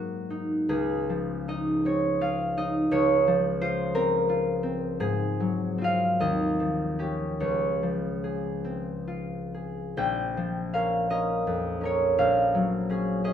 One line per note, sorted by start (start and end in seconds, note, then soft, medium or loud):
0.00 0.72 G#2 soft
0.00 0.72 F#3 soft
0.00 1.18 G#3 soft
0.00 0.72 A#3 soft
0.00 0.29 D#4 soft
0.00 0.72 F#4 soft
0.00 0.68 G#4 soft
0.00 1.18 C#5 soft
0.30 1.47 D#4 soft
0.69 2.90 C#2 soft
0.69 2.96 G#4 soft
1.10 3.26 F3 soft
1.48 2.56 D#4 soft
1.48 2.56 D#5 medium
1.85 3.93 C4 soft
1.85 2.91 C#5 medium
2.21 3.60 F4 soft
2.21 5.80 F5 medium
2.57 2.95 D#4 soft
2.57 2.96 D#5 medium
2.91 5.02 C#2 soft
2.91 5.03 C#5 medium
3.27 6.58 F3 soft
3.61 4.28 F4 soft
3.61 6.23 C5 medium
3.94 4.62 C4 soft
3.94 7.44 A#4 medium
4.29 5.80 F4 soft
4.63 5.78 C4 soft
5.00 6.23 G#2 soft
5.00 6.23 G#4 medium
5.40 6.23 F#3 soft
5.78 6.23 C4 soft
5.78 9.06 F4 soft
5.84 9.74 F5 medium
6.20 7.45 D#2 soft
6.20 7.45 D#5 medium
6.60 7.82 F3 soft
6.99 10.73 C#4 soft
6.99 7.44 G4 soft
7.40 10.00 C#2 soft
7.40 11.30 C#5 soft
7.83 10.36 F3 soft
8.24 9.53 G#4 soft
8.64 10.00 C4 soft
9.08 12.22 F4 soft
9.54 10.01 G#4 soft
9.97 12.17 A#1 soft
9.97 12.22 G5 medium
10.37 12.22 F3 soft
10.74 11.09 C#4 soft
10.74 11.10 A#4 soft
10.74 12.17 F5 medium
11.10 11.81 C#4 soft
11.10 11.82 A#4 soft
11.10 12.33 D#5 medium
11.47 12.22 F2 soft
11.81 12.89 C#4 soft
11.81 13.33 A#4 soft
11.85 13.33 C#5 soft
12.18 13.33 A#1 soft
12.18 13.33 F5 medium
12.55 13.33 F#3 soft
12.90 13.23 C#4 soft
12.90 13.24 G#4 soft
13.24 13.33 C#4 soft
13.24 13.33 G#4 soft
13.24 13.33 D#5 medium